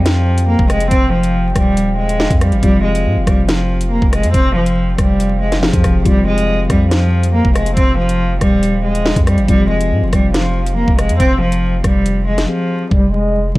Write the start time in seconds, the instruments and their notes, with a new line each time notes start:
Already playing: 808-style bass F2, tine electric piano F3 C4 F4 G4, brass ensemble F4 C5 F5 G5
0.06 cello F3, snare, closed hi-hat
0.38 closed hi-hat
0.48 cello A#3
0.59 808-style bass F1, kick
0.70 cello G#3, cross-stick, closed hi-hat
0.81 closed hi-hat
0.91 808-style bass F1, cello C4, kick, closed hi-hat
1.13 cello F3
1.23 closed hi-hat
1.55 808-style bass D#1, cello G3, kick, cross-stick, closed hi-hat
1.77 closed hi-hat
1.98 cello G#3
2.09 closed hi-hat
2.20 snare
2.31 808-style bass F2, kick, closed hi-hat
2.41 cello G3, cross-stick, closed hi-hat
2.52 808-style bass G#1, closed hi-hat
2.62 808-style bass F1, tine electric piano F3 C4 F4 G4, cello G3, brass ensemble C5 G5, kick, closed hi-hat
2.84 cello G#3
2.95 closed hi-hat
3.06 808-style bass G#2
3.16 808-style bass F1
3.27 808-style bass F1, cello G3, kick, cross-stick, closed hi-hat
3.49 cello F3, snare, closed hi-hat
3.81 closed hi-hat
3.91 cello A#3
4.02 808-style bass F1, kick
4.13 cello G#3, cross-stick, closed hi-hat
4.23 808-style bass F2, closed hi-hat
4.34 808-style bass F1, cello C4, kick, closed hi-hat
4.56 cello F3
4.66 closed hi-hat
4.98 808-style bass F1, cello G3, kick, cross-stick, closed hi-hat
5.20 closed hi-hat
5.42 cello G#3
5.52 snare, closed hi-hat
5.62 tine electric piano F3 C4 G4 G#4, cello F3, snare
5.73 808-style bass F2, kick, closed hi-hat
5.84 808-style bass F1, kick, cross-stick, closed hi-hat
6.04 808-style bass F1, tine electric piano F3 C4 F4 G4, cello G3, brass ensemble F5, kick, closed hi-hat
6.27 cello G#3
6.38 closed hi-hat
6.70 808-style bass F2, cello G3, kick, cross-stick, closed hi-hat
6.91 cello F3, snare, closed hi-hat
7.23 closed hi-hat
7.34 cello A#3
7.45 808-style bass F1, kick
7.55 cello G#3, cross-stick, closed hi-hat
7.66 closed hi-hat
7.76 808-style bass F1, cello C4, kick, closed hi-hat
7.99 cello F3
8.09 closed hi-hat
8.41 808-style bass D#1, cello G3, kick, cross-stick, closed hi-hat
8.63 closed hi-hat
8.84 cello G#3
8.95 closed hi-hat
9.06 snare
9.16 808-style bass F2, kick, closed hi-hat
9.27 cello G3, cross-stick, closed hi-hat
9.38 808-style bass G#1, closed hi-hat
9.48 808-style bass F1, tine electric piano F3 C4 F4 G4, cello G3, brass ensemble F4 F5, kick, closed hi-hat
9.69 cello G#3
9.81 closed hi-hat
9.91 808-style bass G#2
10.02 808-style bass F1
10.12 808-style bass F1, cello G3, kick, cross-stick, closed hi-hat
10.34 cello F3, snare, closed hi-hat
10.66 closed hi-hat
10.76 cello A#3
10.88 808-style bass F1, kick
10.99 cello G#3, cross-stick, closed hi-hat
11.09 808-style bass F2, closed hi-hat
11.19 808-style bass F1, cello C4, kick, closed hi-hat
11.41 cello F3
11.52 closed hi-hat
11.84 808-style bass F1, cello G3, kick, cross-stick, closed hi-hat
12.06 closed hi-hat
12.28 cello G#3
12.38 snare, closed hi-hat
12.48 tine electric piano F3 C4 G4 G#4, cello F3
12.91 808-style bass F1, cello G3, kick
13.13 cello G#3